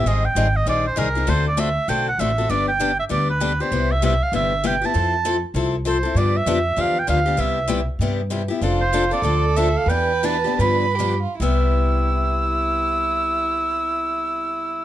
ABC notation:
X:1
M:4/4
L:1/8
Q:"Swing" 1/4=196
K:C
V:1 name="Oboe"
_e g2 e d c _B2 | c d e2 g ^f e2 | d g2 e d B2 c- | c e e f e2 g a- |
a3 z3 c2 | d e3 f g f2 | e3 z4 z | z c2 d3 e f |
g2 a2 b3 z | e'8- | e'8 |]
V:2 name="Violin"
z8 | z8 | z8 | z8 |
z8 | z8 | z8 | F4 A4 |
B4 B2 G F | E8- | E8 |]
V:3 name="Steel-string acoustic guitar"
[_E,G,C_E_A] z [E,G,CEA] z [E,G,CEA] z [E,G,CEA] [CEA] | [D,A,C^FA] z [D,A,CFA] z [D,A,CFA] z [D,A,CFA] [CFA] | [D,G,B,DG] z [D,G,B,DG] z [D,G,B,DG] z [D,G,B,DG] [B,DG] | [C,G,B,EG] z [C,G,B,EG] z [C,G,B,EG] z [C,G,B,EG] [B,EG] |
[F,CEA] z [F,CEA] z [F,CEA] z [F,CEA] [CEA] | [D,F,B,DG] z [D,F,B,DG] z [D,F,B,DG] z [D,F,B,DG] [B,DG] | [C,G,B,EG] z [C,G,B,EG] z [C,G,B,EG] z [C,G,B,EG] [B,EG] | [F,CDA] z [F,CDA] [CDA] [D,F,CDA] z [D,F,CDA] z |
[E,B,DG] z [E,B,DG] [B,DG] [D,F,B,DG] z [D,F,B,DG] z | [C,G,B,EG]8- | [C,G,B,EG]8 |]
V:4 name="Upright bass" clef=bass
_A,,,2 A,,,2 _B,,,2 C,,2 | D,,4 B,,,2 A,,,2 | G,,,4 D,,4 | C,,4 G,,,4 |
F,,4 C,,4 | G,,2 F,,2 E,,2 D,,2 | C,,4 G,,4 | F,,,4 D,,4 |
E,,4 G,,4 | C,,8- | C,,8 |]